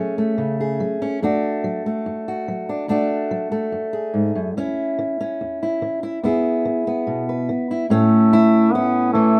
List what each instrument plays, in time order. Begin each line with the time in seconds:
Already playing: steel-string acoustic guitar F#2 F#3 A3 C#4 G#4
0.18 steel-string acoustic guitar A3
0.38 steel-string acoustic guitar C#3
0.60 steel-string acoustic guitar G#4
0.80 steel-string acoustic guitar F#3
1.02 steel-string acoustic guitar C#4
1.22 steel-string acoustic guitar F#2 A3 D4 F#4
1.64 steel-string acoustic guitar F#3
1.86 steel-string acoustic guitar A3
2.06 steel-string acoustic guitar F#2
2.28 steel-string acoustic guitar F#4
2.48 steel-string acoustic guitar F#3
2.69 steel-string acoustic guitar D4
2.88 steel-string acoustic guitar F#2 A3 D4 F#4
3.31 steel-string acoustic guitar F#3
3.52 steel-string acoustic guitar A3
3.72 steel-string acoustic guitar F#2
3.93 steel-string acoustic guitar G#4
4.14 steel-string acoustic guitar G#2
4.35 steel-string acoustic guitar F#2
4.57 steel-string acoustic guitar E2 C#4 E4
4.99 steel-string acoustic guitar E3
5.21 steel-string acoustic guitar C#4
5.41 steel-string acoustic guitar E2
5.63 steel-string acoustic guitar E4
5.82 steel-string acoustic guitar E3
6.03 steel-string acoustic guitar E4
6.23 steel-string acoustic guitar E2 B3 E4 G#4
6.65 steel-string acoustic guitar E3
6.87 steel-string acoustic guitar B3
7.07 steel-string acoustic guitar B2
7.29 steel-string acoustic guitar B4
7.49 steel-string acoustic guitar E3
7.71 steel-string acoustic guitar E4
7.89 steel-string acoustic guitar A2 C#4, duduk A3
8.33 steel-string acoustic guitar E4
8.73 duduk B3, steel-string acoustic guitar C#4
9.13 steel-string acoustic guitar E3, duduk A3